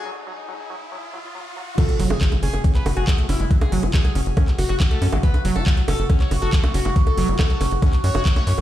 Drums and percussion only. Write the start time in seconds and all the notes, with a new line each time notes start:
1.78 kick, closed hi-hat, crash, high bongo
1.89 closed hi-hat
2.00 open hi-hat
2.10 closed hi-hat, high bongo
2.21 kick, clap, closed hi-hat
2.32 closed hi-hat, high bongo
2.43 open hi-hat
2.54 closed hi-hat, high bongo
2.64 kick, closed hi-hat
2.75 clap, closed hi-hat
2.86 open hi-hat, high bongo
2.97 closed hi-hat
3.07 kick, clap, closed hi-hat, high bongo
3.18 closed hi-hat
3.29 open hi-hat, high bongo
3.40 closed hi-hat
3.51 kick, closed hi-hat
3.61 closed hi-hat, high bongo
3.72 open hi-hat
3.83 closed hi-hat, high bongo
3.94 kick, clap, closed hi-hat
4.05 closed hi-hat, high bongo
4.15 open hi-hat
4.26 closed hi-hat
4.37 kick, closed hi-hat, high bongo
4.48 clap, closed hi-hat
4.59 open hi-hat, high bongo
4.80 kick, clap, closed hi-hat, high bongo
4.91 closed hi-hat
5.02 open hi-hat
5.12 closed hi-hat, high bongo
5.23 kick, closed hi-hat
5.34 closed hi-hat, high bongo
5.45 open hi-hat
5.56 closed hi-hat, high bongo
5.66 kick, clap, closed hi-hat
5.77 closed hi-hat
5.88 open hi-hat, high bongo
5.99 closed hi-hat
6.10 kick, closed hi-hat, high bongo
6.20 clap, closed hi-hat
6.31 open hi-hat, high bongo
6.42 closed hi-hat
6.53 kick, clap, closed hi-hat
6.64 closed hi-hat, high bongo
6.74 open hi-hat
6.85 closed hi-hat, high bongo
6.96 kick, closed hi-hat
7.07 closed hi-hat, high bongo
7.17 open hi-hat
7.28 closed hi-hat
7.39 kick, clap, closed hi-hat, high bongo
7.50 closed hi-hat
7.61 open hi-hat, high bongo
7.71 closed hi-hat
7.82 kick, closed hi-hat, high bongo
7.93 clap, closed hi-hat
8.04 open hi-hat
8.15 closed hi-hat, high bongo
8.25 kick, clap, closed hi-hat
8.36 closed hi-hat, high bongo
8.47 open hi-hat
8.58 closed hi-hat, high bongo